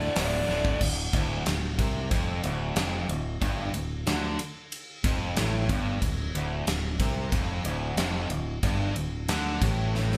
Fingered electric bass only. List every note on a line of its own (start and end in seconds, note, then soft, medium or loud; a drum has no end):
0.17 0.41 D1 medium
0.48 0.73 D1 loud
0.81 1.11 D1 medium
1.13 1.44 D1 medium
1.47 1.77 D1 medium
1.79 2.09 C2 medium
2.11 2.42 F1 medium
2.44 2.74 D1 medium
2.76 3.07 F1 medium
3.09 3.40 D1 medium
3.42 3.72 G1 loud
3.74 4.05 D1 medium
4.07 4.37 D2 loud
4.40 muted fingered electric bass stroke soft
5.04 5.35 F1 medium
5.37 5.68 A1 medium
5.69 6.00 G1 loud
6.02 6.32 D1 medium
6.35 6.65 D1 medium
6.66 6.97 D1 medium
6.99 7.30 C2 medium
7.32 7.63 F1 medium
7.65 7.95 D1 medium
7.97 8.28 F1 medium
8.30 8.61 D1 medium
8.63 8.94 G1 medium
8.96 9.27 D1 medium
9.28 9.59 D2 loud
9.61 10.17 A1 loud